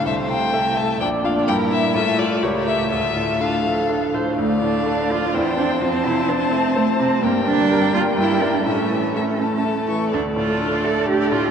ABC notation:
X:1
M:3/4
L:1/8
Q:1/4=126
K:Dm
V:1 name="Violin"
e g2 a g f | g e e d ^c e | e2 f3 z | f4 g2 |
a6 | g6 | e2 e a2 ^c' | d6 |]
V:2 name="Violin"
c2 e2 d2 | B2 A2 B2 | A4- A z | d4 c2- |
c6 | B6 | A6- | A6 |]
V:3 name="Viola"
A,4 D2 | E2 F2 G2 | F2 F A2 c | A,4 C2- |
C6 | G,6 | A,6- | A,6 |]
V:4 name="Cello"
C,4 B,,2- | B,,2 A,,4- | A,,4- A,, z | A, D2 F E D |
C E D C A, C | B, D2 F E D | ^C4 z2 | D F2 A G F |]
V:5 name="Grand piano"
C,, C, [EA] A, B,,, [DF] | G,, E A,, [FA] ^C,, [EA] | D,, A,, [DA] F, [DA] A,, | D,, A,, [DA] F, E,, [Cc] |
F,, C, [Cc] A, [Cc] C, | G,, D, [GB] B, G,, [EB] | A,, E, [EA] A, [EA] E, | D,, A,, [DA] A, [DA] A,, |]